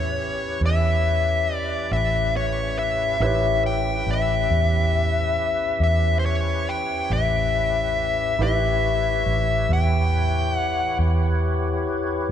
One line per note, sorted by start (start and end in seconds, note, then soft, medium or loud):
0.00 0.58 E2 medium
0.00 3.18 C#4 medium
0.00 3.16 E4 soft
0.00 3.18 E4 medium
0.00 3.17 G4 soft
0.00 3.17 G4 medium
0.00 3.18 B4 medium
0.00 3.18 B4 soft
0.00 0.61 C#5 medium
0.00 3.18 C#5 soft
0.61 1.87 E2 medium
0.66 1.55 E5 medium
1.55 1.92 D5 medium
1.91 3.17 A1 medium
1.91 2.36 E5 medium
2.37 2.78 C#5 medium
2.79 3.21 E5 medium
3.20 4.03 A1 medium
3.20 8.36 C#4 medium
3.20 8.36 E4 soft
3.20 8.36 E4 medium
3.20 8.36 G4 soft
3.20 8.36 G4 medium
3.20 8.36 B4 medium
3.20 8.37 B4 soft
3.20 8.37 C#5 medium
3.20 3.62 E5 medium
3.66 4.10 G5 medium
4.07 4.47 A1 medium
4.11 5.82 E5 medium
4.50 5.76 E2 medium
5.80 7.06 E2 medium
5.80 6.19 E5 medium
6.19 6.25 C5 medium
6.26 6.69 C#5 medium
6.69 7.12 G5 medium
7.10 8.36 A1 medium
7.10 8.42 E5 medium
8.39 9.22 A1 medium
8.39 12.31 E4 soft
8.39 12.31 E4 medium
8.39 12.31 G4 soft
8.39 12.31 G4 medium
8.39 12.31 B4 soft
8.39 12.31 B4 medium
8.39 12.31 C#5 medium
8.39 12.31 E5 soft
8.43 9.73 E5 medium
9.26 9.66 A1 medium
9.69 10.96 E2 medium
9.69 10.54 G5 medium
10.54 10.98 F#5 medium
10.99 12.25 E2 medium